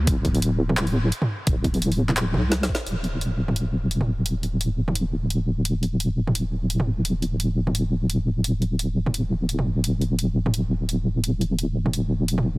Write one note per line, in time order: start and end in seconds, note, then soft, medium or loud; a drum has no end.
0.07 1.11 D1 loud
0.07 kick loud
0.07 closed hi-hat medium
0.25 kick medium
0.25 closed hi-hat soft
0.35 open hi-hat soft
0.42 closed hi-hat medium
0.69 mid tom medium
0.77 clap loud
0.77 closed hi-hat medium
0.87 open hi-hat soft
1.12 closed hi-hat medium
1.22 mid tom medium
1.47 2.36 D1 loud
1.47 kick loud
1.47 closed hi-hat medium
1.64 kick medium
1.64 closed hi-hat soft
1.74 open hi-hat soft
1.82 closed hi-hat medium
1.92 open hi-hat soft
2.09 clap soft
2.09 mid tom medium
2.17 clap loud
2.17 closed hi-hat medium
2.34 2.68 C2 medium
2.34 mid tom medium
2.52 snare medium
2.52 closed hi-hat medium
2.63 snare medium
2.69 kick medium
2.75 snare loud
2.87 8.43 D1 medium
2.87 closed hi-hat medium
3.04 closed hi-hat soft
3.21 closed hi-hat medium
3.48 mid tom soft
3.56 closed hi-hat medium
3.91 closed hi-hat medium
4.01 mid tom medium
4.26 closed hi-hat medium
4.43 closed hi-hat soft
4.61 closed hi-hat medium
4.88 mid tom soft
4.95 closed hi-hat medium
5.30 closed hi-hat medium
5.65 closed hi-hat medium
5.83 closed hi-hat soft
6.00 closed hi-hat medium
6.27 mid tom soft
6.35 closed hi-hat medium
6.70 closed hi-hat medium
6.80 mid tom medium
7.05 closed hi-hat medium
7.22 closed hi-hat soft
7.40 closed hi-hat medium
7.67 mid tom soft
7.75 closed hi-hat medium
8.10 closed hi-hat medium
8.44 12.58 D1 medium
8.44 closed hi-hat medium
8.62 closed hi-hat soft
8.79 closed hi-hat medium
9.06 mid tom soft
9.14 closed hi-hat medium
9.49 closed hi-hat medium
9.59 mid tom medium
9.84 closed hi-hat medium
10.01 closed hi-hat soft
10.19 closed hi-hat medium
10.46 mid tom soft
10.54 closed hi-hat medium
10.89 closed hi-hat medium
11.24 closed hi-hat medium
11.41 closed hi-hat soft
11.59 closed hi-hat medium
11.86 mid tom medium
11.93 closed hi-hat medium
12.28 closed hi-hat medium
12.38 mid tom medium